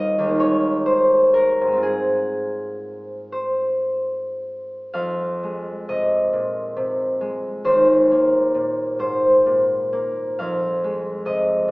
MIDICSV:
0, 0, Header, 1, 2, 480
1, 0, Start_track
1, 0, Key_signature, -4, "major"
1, 0, Tempo, 899550
1, 461, Tempo, 974026
1, 940, Time_signature, 6, 3, 24, 8
1, 1421, Tempo, 1032702
1, 1901, Tempo, 1088929
1, 2381, Key_signature, -4, "minor"
1, 2381, Tempo, 943396
1, 2861, Tempo, 888889
1, 4301, Tempo, 916031
1, 5261, Tempo, 862069
1, 6004, End_track
2, 0, Start_track
2, 0, Title_t, "Harp"
2, 0, Program_c, 0, 46
2, 0, Note_on_c, 0, 39, 43
2, 0, Note_on_c, 0, 55, 35
2, 0, Note_on_c, 0, 60, 35
2, 0, Note_on_c, 0, 63, 32
2, 0, Note_on_c, 0, 65, 37
2, 0, Note_on_c, 0, 75, 57
2, 0, Note_on_c, 0, 77, 69
2, 92, Note_off_c, 0, 39, 0
2, 98, Note_on_c, 0, 39, 42
2, 124, Note_on_c, 0, 56, 32
2, 154, Note_on_c, 0, 58, 35
2, 178, Note_off_c, 0, 65, 0
2, 184, Note_on_c, 0, 65, 35
2, 195, Note_off_c, 0, 55, 0
2, 210, Note_off_c, 0, 60, 0
2, 212, Note_on_c, 0, 73, 61
2, 224, Note_off_c, 0, 63, 0
2, 458, Note_on_c, 0, 72, 60
2, 694, Note_on_c, 0, 70, 58
2, 830, Note_on_c, 0, 44, 35
2, 851, Note_off_c, 0, 56, 0
2, 857, Note_on_c, 0, 56, 32
2, 866, Note_off_c, 0, 72, 0
2, 882, Note_on_c, 0, 60, 30
2, 902, Note_off_c, 0, 65, 0
2, 904, Note_off_c, 0, 39, 0
2, 908, Note_on_c, 0, 65, 29
2, 930, Note_off_c, 0, 58, 0
2, 936, Note_on_c, 0, 68, 53
2, 957, Note_off_c, 0, 70, 0
2, 957, Note_off_c, 0, 73, 0
2, 1659, Note_on_c, 0, 72, 49
2, 1702, Note_off_c, 0, 77, 0
2, 1901, Note_off_c, 0, 75, 0
2, 2349, Note_off_c, 0, 44, 0
2, 2382, Note_on_c, 0, 77, 61
2, 2384, Note_on_c, 0, 41, 41
2, 2629, Note_off_c, 0, 56, 0
2, 2635, Note_on_c, 0, 56, 33
2, 2730, Note_off_c, 0, 60, 0
2, 2756, Note_off_c, 0, 65, 0
2, 2785, Note_off_c, 0, 68, 0
2, 2866, Note_on_c, 0, 48, 30
2, 2867, Note_on_c, 0, 75, 56
2, 3105, Note_on_c, 0, 46, 28
2, 3334, Note_off_c, 0, 48, 0
2, 3340, Note_on_c, 0, 48, 34
2, 3506, Note_off_c, 0, 46, 0
2, 3574, Note_off_c, 0, 56, 0
2, 3580, Note_on_c, 0, 56, 33
2, 3588, Note_off_c, 0, 72, 0
2, 3815, Note_on_c, 0, 39, 40
2, 3818, Note_on_c, 0, 72, 59
2, 3835, Note_off_c, 0, 48, 0
2, 3838, Note_off_c, 0, 41, 0
2, 3838, Note_off_c, 0, 56, 0
2, 4068, Note_on_c, 0, 58, 34
2, 4302, Note_on_c, 0, 46, 31
2, 4454, Note_off_c, 0, 77, 0
2, 4531, Note_off_c, 0, 72, 0
2, 4535, Note_on_c, 0, 44, 30
2, 4539, Note_on_c, 0, 72, 58
2, 4775, Note_off_c, 0, 46, 0
2, 4782, Note_on_c, 0, 46, 32
2, 4948, Note_off_c, 0, 44, 0
2, 4953, Note_off_c, 0, 75, 0
2, 5020, Note_off_c, 0, 58, 0
2, 5026, Note_on_c, 0, 58, 37
2, 5268, Note_on_c, 0, 77, 63
2, 5272, Note_on_c, 0, 41, 44
2, 5281, Note_off_c, 0, 39, 0
2, 5284, Note_off_c, 0, 58, 0
2, 5285, Note_off_c, 0, 46, 0
2, 5520, Note_on_c, 0, 56, 35
2, 5749, Note_on_c, 0, 48, 32
2, 5753, Note_on_c, 0, 75, 65
2, 6004, Note_off_c, 0, 41, 0
2, 6004, Note_off_c, 0, 48, 0
2, 6004, Note_off_c, 0, 56, 0
2, 6004, Note_off_c, 0, 72, 0
2, 6004, Note_off_c, 0, 75, 0
2, 6004, Note_off_c, 0, 77, 0
2, 6004, End_track
0, 0, End_of_file